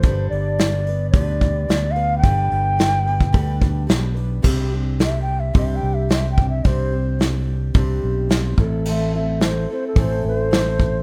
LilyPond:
<<
  \new Staff \with { instrumentName = "Bansuri" } { \time 4/4 \key c \major \tempo 4 = 109 c''8 d''4. d''4. f''8 | g''2. r4 | r4 \tuplet 3/2 { e''8 g''8 e''8 e''8 g''8 e''8 e''8 g''8 e''8 } | c''4 r2. |
e''8 e''8 c''8 c''16 a'16 c''8 c''4. | }
  \new Staff \with { instrumentName = "Steel-string acoustic guitar" } { \time 4/4 \key c \major <g, d g b d' b'>4 <g b d' b'>8 <g b d' b'>8 <g, d g b d' b'>4 <g b d' b'>8 <g b d' b'>8 | <g, d g b d' b'>4 <g b d' b'>8 <g b d' b'>8 <g, d g b d' b'>4 <g b d' b'>8 <g b d' b'>8 | <c g c' d' g'>8 <c' d' g'>8 <g c' d' g'>4 <c g c' d' g'>4 <g c' d' g'>8 <c' d' g'>8 | <c g c' d' g'>8 <c' d' g'>8 <g c' d' g'>4 <c g c' d' g'>4 <g c' d' g'>8 <a c' e' a'>8 |
<a, e a c' e' a'>8 <a c' e' a'>8 <a c' e' a'>8 <a c' e' a'>8 <a, e a c' e' a'>4 <a c' e' a'>4 | }
  \new Staff \with { instrumentName = "Fingered electric bass" } { \clef bass \time 4/4 \key c \major g,,8 g,,4. d,4 d,4 | g,,8 g,,4. d,4 b,,4 | c,2 c,8 c,4. | c,2 c,8 b,,4 a,,8~ |
a,,4. r8 a,,8 a,,4. | }
  \new DrumStaff \with { instrumentName = "Drums" } \drummode { \time 4/4 <hho bd>8 hho8 <hho sn>8 hho8 <hho bd>8 <hho bd>8 <hho sn>8 hho8 | <hho bd>8 hho8 <hho sn>8 hho16 bd16 <hho bd>8 <hho bd>8 <hho sn>8 hho8 | <cymc bd>4 <hho sn>4 <hho bd>4 <hho sn>8 bd8 | <hho bd>4 <hho sn>4 <hho bd>4 <hho sn>8 bd8 |
cymc4 <hho sn>4 <hho bd>4 <hho sn>8 bd8 | }
>>